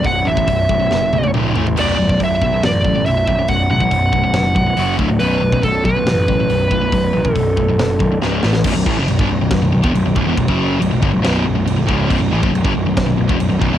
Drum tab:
CC |----------------|x---------------|----------------|----------------|
HH |o---o-----------|o---o---o---o---|o---o---o---o---|o---o---o---o---|
SD |--------o-------|--------o-------|--------o-------|--------o-------|
T1 |----------oo----|----------------|----------------|----------------|
T2 |------------o---|----------------|----------------|----------------|
FT |--------------oo|----------------|----------------|----------------|
BD |o--oo-o---------|---oo-o---o---o-|o--oo-o---o---o-|---oo-o---o---o-|

CC |----------------|x---x---x---x---|x---x---x---x---|x---x---x---x---|
HH |o---o---o-------|----------------|----------------|----------------|
SD |--------o---o-oo|--------o-------|--------o-------|--------o-------|
T1 |----------------|----------------|----------------|----------------|
T2 |----------------|----------------|----------------|----------------|
FT |----------------|----------------|----------------|----------------|
BD |o--oo-o---o-----|o-o--o--o--o--o-|oo----o-------o-|o--o-o--o--o--o-|